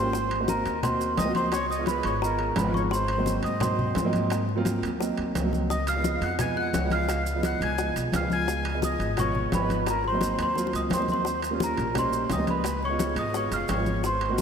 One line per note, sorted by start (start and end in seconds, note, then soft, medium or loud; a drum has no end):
0.00 0.60 G#1 loud
0.00 0.13 A#3 loud
0.00 0.14 C#4 medium
0.00 0.14 F4 medium
0.00 0.14 G4 loud
0.00 0.44 C5 medium
0.00 0.50 C6 loud
0.13 high bongo medium
0.13 high conga soft
0.13 maracas medium
0.31 high bongo soft
0.31 high conga soft
0.31 high timbale medium
0.40 0.70 A#3 medium
0.40 0.70 C4 medium
0.40 0.71 D#4 medium
0.40 0.71 F#4 medium
0.48 0.80 A#4 medium
0.48 0.85 A#5 medium
0.48 high bongo medium
0.48 high conga medium
0.48 low timbale medium
0.48 maracas medium
0.65 1.14 D#2 medium
0.65 high conga soft
0.65 high timbale medium
0.65 maracas soft
0.83 1.14 A#3 medium
0.83 1.14 C4 medium
0.83 1.14 D#4 medium
0.83 1.14 F#4 medium
0.83 1.16 C5 medium
0.83 1.19 C6 loud
0.83 high bongo medium
0.83 high conga soft
0.83 low conga medium
0.83 high timbale medium
0.83 maracas medium
1.00 high bongo soft
1.00 high conga soft
1.00 maracas medium
1.17 1.99 C#2 medium
1.17 1.34 D#5 medium
1.17 1.34 D#6 loud
1.17 high bongo soft
1.17 low bongo medium
1.17 high conga medium
1.17 high timbale medium
1.17 low timbale medium
1.17 maracas medium
1.25 1.52 A#3 medium
1.25 1.52 C4 medium
1.25 1.52 D#4 medium
1.25 1.53 F#4 medium
1.35 1.51 C5 medium
1.35 1.52 C6 medium
1.35 high bongo soft
1.35 high conga medium
1.35 high timbale medium
1.35 maracas soft
1.52 1.68 C#5 medium
1.52 1.71 C#6 medium
1.52 high bongo medium
1.52 high conga soft
1.52 high timbale medium
1.52 maracas medium
1.70 1.86 D#5 medium
1.70 1.87 D#6 medium
1.70 high bongo soft
1.70 high conga soft
1.70 maracas medium
1.78 2.09 G#3 medium
1.78 2.09 B3 medium
1.78 2.09 D#4 medium
1.78 2.10 F4 medium
1.86 2.04 B4 medium
1.86 2.05 B5 medium
1.86 high bongo medium
1.86 high conga medium
1.86 high timbale medium
1.86 low timbale soft
1.86 maracas medium
2.03 2.53 G#1 medium
2.03 2.22 C#5 medium
2.03 2.23 C#6 loud
2.03 high conga soft
2.03 high timbale loud
2.03 maracas soft
2.21 2.52 G#3 medium
2.21 2.53 B3 medium
2.21 2.53 D#4 medium
2.21 2.53 F4 medium
2.21 2.55 A#4 medium
2.21 2.54 A#5 medium
2.21 high bongo medium
2.21 high conga soft
2.21 maracas medium
2.39 high bongo soft
2.39 high conga soft
2.39 high timbale medium
2.56 3.38 G#1 loud
2.56 2.74 B4 medium
2.56 2.75 B5 medium
2.56 high bongo soft
2.56 low bongo medium
2.56 high conga medium
2.56 high timbale loud
2.56 low timbale medium
2.56 maracas medium
2.65 2.92 G#3 medium
2.65 2.92 B3 medium
2.65 2.92 D#4 medium
2.65 2.92 F4 medium
2.74 2.82 C#5 medium
2.74 2.82 C#6 medium
2.74 high bongo soft
2.74 high conga medium
2.74 maracas soft
2.91 3.41 C5 medium
2.91 3.40 C6 medium
2.91 high bongo medium
2.91 high conga soft
2.91 maracas medium
3.08 high bongo soft
3.08 high conga soft
3.08 high timbale medium
3.17 3.48 F#3 medium
3.17 3.48 A#3 medium
3.17 3.48 C4 medium
3.17 3.49 D#4 medium
3.26 high bongo medium
3.26 high conga medium
3.26 low timbale medium
3.26 maracas medium
3.43 3.92 G#2 loud
3.43 3.60 D#5 medium
3.43 3.62 D#6 medium
3.43 high conga soft
3.43 high timbale medium
3.43 maracas soft
3.60 3.91 F#3 medium
3.60 3.91 A#3 medium
3.60 3.92 C4 medium
3.60 3.92 D#4 loud
3.60 4.11 C5 medium
3.60 4.10 C6 medium
3.60 high bongo medium
3.60 high conga soft
3.60 low conga medium
3.60 high timbale medium
3.60 maracas medium
3.79 high bongo soft
3.79 high conga soft
3.79 low conga medium
3.95 4.77 G#2 medium
3.95 high bongo soft
3.95 low bongo medium
3.95 high conga medium
3.95 high timbale medium
3.95 low timbale medium
3.95 maracas medium
4.04 4.41 F#3 medium
4.04 4.41 A#3 medium
4.04 4.42 C4 medium
4.04 4.42 D#4 loud
4.13 high bongo soft
4.13 high conga medium
4.13 high timbale medium
4.13 maracas soft
4.30 high bongo medium
4.30 high conga soft
4.30 high timbale loud
4.30 maracas medium
4.49 high bongo soft
4.49 high conga soft
4.55 4.87 F#3 medium
4.55 4.87 A#3 loud
4.55 4.87 C4 medium
4.55 4.88 F4 loud
4.65 high bongo medium
4.65 high conga loud
4.65 high timbale medium
4.65 low timbale medium
4.65 maracas medium
4.82 5.15 D#2 medium
4.82 high conga soft
4.82 high timbale medium
4.82 maracas soft
4.99 5.30 F#3 medium
4.99 5.30 A#3 medium
4.99 5.31 C4 medium
4.99 5.31 D#4 medium
4.99 high bongo medium
4.99 high conga soft
4.99 maracas medium
5.17 5.34 D#2 medium
5.17 high bongo soft
5.17 high conga soft
5.17 high timbale medium
5.35 6.16 C#2 medium
5.35 high bongo soft
5.35 low bongo medium
5.35 high conga medium
5.35 high timbale medium
5.35 low timbale medium
5.35 maracas medium
5.42 5.69 F#3 medium
5.42 5.69 A#3 medium
5.42 5.70 C4 medium
5.42 5.70 D#4 medium
5.53 high bongo soft
5.53 high conga medium
5.53 maracas soft
5.70 5.86 D#5 medium
5.70 5.86 D#6 loud
5.70 high bongo medium
5.70 high conga soft
5.70 maracas medium
5.87 6.20 F5 medium
5.87 6.20 F6 loud
5.87 high bongo soft
5.87 high conga soft
5.87 high timbale medium
5.87 maracas medium
5.96 6.26 F3 medium
5.96 6.26 G#3 medium
5.96 6.27 B3 medium
5.96 6.27 D#4 medium
6.04 high bongo medium
6.04 high conga medium
6.04 low timbale medium
6.04 maracas medium
6.21 6.70 F2 medium
6.21 6.39 F#5 medium
6.21 6.39 F#6 loud
6.21 high conga soft
6.21 high timbale medium
6.21 maracas soft
6.39 6.70 F3 medium
6.39 6.70 G#3 medium
6.39 6.70 B3 medium
6.39 6.70 D#4 medium
6.39 6.56 G#5 medium
6.39 6.58 G#6 loud
6.39 high bongo medium
6.39 high conga soft
6.39 low conga medium
6.39 high timbale medium
6.39 maracas medium
6.56 6.90 F#5 medium
6.56 6.89 F#6 loud
6.56 high bongo soft
6.56 high conga soft
6.73 7.55 C#2 medium
6.73 high bongo soft
6.73 low bongo medium
6.73 high conga medium
6.73 high timbale medium
6.73 low timbale medium
6.73 maracas medium
6.82 7.19 F3 medium
6.82 7.19 G#3 medium
6.82 7.20 B3 medium
6.82 7.20 D#4 medium
6.91 7.41 F5 medium
6.91 7.46 F6 loud
6.91 high bongo soft
6.91 high conga medium
6.91 high timbale medium
6.91 maracas soft
7.08 high bongo medium
7.08 high conga soft
7.08 high timbale medium
7.08 maracas medium
7.25 high bongo soft
7.25 high conga soft
7.25 maracas medium
7.34 7.65 F3 medium
7.34 7.65 G#3 medium
7.34 7.65 B3 medium
7.34 7.66 D#4 medium
7.43 7.61 F#5 medium
7.43 7.61 F#6 medium
7.43 high bongo medium
7.43 high conga medium
7.43 high timbale medium
7.43 low timbale medium
7.43 maracas medium
7.61 7.93 C#2 medium
7.61 7.94 G#5 medium
7.61 7.94 G#6 loud
7.61 high conga soft
7.61 high timbale medium
7.61 maracas soft
7.78 8.09 F3 medium
7.78 8.09 G#3 medium
7.78 8.09 B3 medium
7.78 8.10 D#4 medium
7.78 high bongo medium
7.78 high conga soft
7.78 maracas medium
7.95 8.12 B1 medium
7.95 high bongo soft
7.95 high conga soft
7.95 high timbale medium
7.95 maracas medium
8.12 8.94 C#2 loud
8.12 8.31 F5 medium
8.12 8.32 F6 medium
8.12 high bongo soft
8.12 low bongo medium
8.12 high conga medium
8.12 high timbale medium
8.12 low timbale medium
8.12 maracas medium
8.20 8.57 F3 medium
8.20 8.58 G#3 medium
8.20 8.58 B3 medium
8.20 8.59 D#4 medium
8.30 8.80 G#5 medium
8.30 8.80 G#6 loud
8.30 high bongo soft
8.30 high conga medium
8.30 maracas soft
8.47 high bongo medium
8.47 high conga soft
8.47 maracas medium
8.65 high bongo soft
8.65 high conga soft
8.65 high timbale medium
8.73 9.04 F3 medium
8.73 9.04 G#3 medium
8.73 9.05 B3 medium
8.73 9.05 D#4 medium
8.82 9.16 D#5 medium
8.82 9.19 D#6 medium
8.82 high bongo medium
8.82 high conga loud
8.82 low timbale medium
8.82 maracas medium
8.99 9.48 G#1 medium
8.99 high conga soft
8.99 high timbale medium
8.99 maracas soft
9.16 9.47 F3 medium
9.16 9.48 G#3 medium
9.16 9.48 B3 medium
9.16 9.48 F4 medium
9.16 9.51 C#5 medium
9.16 9.51 C#6 loud
9.16 high bongo medium
9.16 high conga soft
9.16 low conga medium
9.16 high timbale medium
9.16 maracas medium
9.35 high bongo soft
9.35 high conga soft
9.35 low conga medium
9.52 10.33 G#1 medium
9.52 9.85 B4 medium
9.52 9.89 B5 medium
9.52 high bongo soft
9.52 low bongo medium
9.52 high conga medium
9.52 high timbale medium
9.52 low timbale medium
9.52 maracas medium
9.60 9.86 F3 medium
9.60 9.87 G#3 medium
9.60 9.87 B3 medium
9.60 9.87 D#4 medium
9.69 high bongo soft
9.69 high conga medium
9.69 high timbale medium
9.69 maracas soft
9.86 10.04 A#4 medium
9.86 10.06 A#5 medium
9.86 high bongo medium
9.86 high conga soft
9.86 high timbale medium
9.86 maracas medium
10.04 10.38 C5 medium
10.04 10.41 C6 medium
10.04 high bongo soft
10.04 high conga soft
10.12 10.43 F#3 medium
10.12 10.43 A#3 medium
10.12 10.44 C4 medium
10.12 10.44 D#4 medium
10.21 high bongo medium
10.21 high conga medium
10.21 high timbale medium
10.21 low timbale medium
10.21 maracas medium
10.38 10.71 D#2 loud
10.38 10.73 C5 medium
10.38 high conga soft
10.38 high timbale medium
10.38 maracas soft
10.43 10.73 C6 loud
10.55 10.86 F#3 medium
10.55 10.87 A#3 medium
10.55 10.87 C4 medium
10.55 10.87 F4 medium
10.55 high bongo medium
10.55 high conga soft
10.55 maracas medium
10.67 high bongo medium
10.73 10.90 C#2 medium
10.73 10.81 D#5 medium
10.73 10.83 D#6 loud
10.73 high conga soft
10.73 high timbale medium
10.73 maracas medium
10.90 11.72 D#2 medium
10.90 11.09 C5 medium
10.90 11.09 C6 medium
10.90 low bongo medium
10.90 high conga medium
10.90 high timbale loud
10.90 low timbale medium
10.90 maracas medium
10.98 11.25 F#3 medium
10.98 11.25 A#3 medium
10.98 11.25 C4 medium
10.98 11.26 D#4 medium
11.02 low bongo medium
11.08 11.40 C5 medium
11.08 11.59 C6 medium
11.08 high conga medium
11.08 maracas soft
11.13 low bongo medium
11.25 high bongo medium
11.25 high conga soft
11.25 maracas medium
11.42 high bongo soft
11.42 high conga soft
11.42 high timbale medium
11.42 maracas medium
11.51 11.82 G3 medium
11.51 11.82 A#3 medium
11.51 11.82 C#4 medium
11.51 11.82 F4 medium
11.60 11.94 A#4 medium
11.60 11.95 A#5 medium
11.60 high bongo medium
11.60 high conga medium
11.60 low timbale medium
11.60 maracas medium
11.77 12.27 A#1 medium
11.77 high conga soft
11.77 high timbale medium
11.77 maracas soft
11.94 12.25 G3 medium
11.94 12.26 A#3 medium
11.94 12.26 C#4 medium
11.94 12.26 D#4 medium
11.94 12.29 C5 medium
11.94 high bongo medium
11.94 high conga soft
11.94 low conga medium
11.94 high timbale loud
11.94 maracas medium
11.99 12.33 C6 medium
12.12 high bongo soft
12.12 high conga soft
12.12 maracas medium
12.30 13.11 C#2 medium
12.30 12.48 D#5 medium
12.30 12.49 D#6 medium
12.30 high bongo soft
12.30 low bongo medium
12.30 high conga medium
12.30 high timbale medium
12.30 low timbale medium
12.30 maracas medium
12.38 12.64 G3 medium
12.38 12.64 A#3 medium
12.38 12.65 C#4 medium
12.38 12.65 D#4 medium
12.47 12.81 B4 medium
12.47 12.85 B5 medium
12.47 high bongo soft
12.47 high conga medium
12.47 high timbale medium
12.47 maracas soft
12.64 high bongo medium
12.64 high conga soft
12.64 high timbale medium
12.64 maracas medium
12.82 13.15 C#5 medium
12.82 13.20 C#6 medium
12.82 high bongo soft
12.82 high conga soft
12.89 13.21 G#3 medium
12.89 13.21 B3 medium
12.89 13.21 D#4 medium
12.89 13.21 F4 medium
12.99 high bongo medium
12.99 high conga medium
12.99 high timbale medium
12.99 low timbale medium
12.99 maracas medium
13.16 13.49 G#1 medium
13.16 13.34 D#5 medium
13.16 13.36 D#6 medium
13.16 high conga soft
13.16 high timbale medium
13.16 maracas soft
13.32 13.64 G#3 medium
13.32 13.64 B3 medium
13.32 13.65 D#4 medium
13.32 13.65 F4 medium
13.32 13.52 C#5 medium
13.32 high bongo medium
13.32 high conga soft
13.32 maracas medium
13.36 13.53 C#6 medium
13.51 13.68 F#1 medium
13.51 13.69 F5 medium
13.51 13.69 F6 medium
13.51 high bongo soft
13.51 high conga soft
13.51 high timbale medium
13.51 maracas medium
13.68 14.42 G#1 medium
13.68 14.03 C#5 medium
13.68 14.06 C#6 medium
13.68 high bongo soft
13.68 low bongo medium
13.68 high conga medium
13.68 high timbale medium
13.68 low timbale medium
13.68 maracas medium
13.77 14.03 G#3 medium
13.77 14.04 B3 medium
13.77 14.04 D#4 medium
13.77 14.04 F4 medium
13.86 high bongo soft
13.86 high conga medium
13.86 maracas soft
14.03 14.37 C5 medium
14.03 14.38 C6 medium
14.03 high bongo medium
14.03 high conga soft
14.03 maracas medium
14.21 high bongo soft
14.21 high conga soft
14.21 high timbale medium
14.29 14.42 A#3 medium
14.29 14.42 C4 medium
14.29 14.42 D#4 medium
14.29 14.42 F#4 loud
14.38 high bongo medium
14.38 high conga loud
14.38 maracas medium